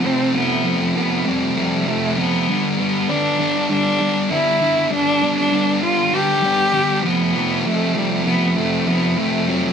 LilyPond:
<<
  \new Staff \with { instrumentName = "Cello" } { \time 4/4 \key g \mixolydian \tempo 4 = 99 c'8 b4 b8 g8 g8 a8 b8~ | b8 b8 d'4 d'4 e'4 | d'8. d'8. f'8 g'4. b8~ | b8 a8 g8 b8 a8 b8 a8 fis8 | }
  \new Staff \with { instrumentName = "Distorted electric guitar" } { \clef bass \time 4/4 \key g \mixolydian <f, c f a c'>8 <f, c f a c'>8 <f, c f a c'>8 <f, c f a c'>8 <f, c f a c'>8 <f, c f a c'>8 <f, c f a c'>8 <f, c f a c'>8 | <g, d g b d'>8 <g, d g b d'>8 <g, d g b d'>8 <g, d g b d'>8 <g, d g b d'>8 <g, d g b d'>8 <g, d g b d'>8 <g, d g b d'>8 | <g, d g b d'>8 <g, d g b d'>8 <g, d g b d'>8 <g, d g b d'>8 <g, d g b d'>8 <g, d g b d'>8 <g, d g b d'>8 <f, c f a c'>8 | <f, c f a c'>8 <f, c f a c'>8 <f, c f a c'>8 <f, c f a c'>8 <f, c f a c'>8 <f, c f a c'>8 <f, c f a c'>8 <f, c f a c'>8 | }
>>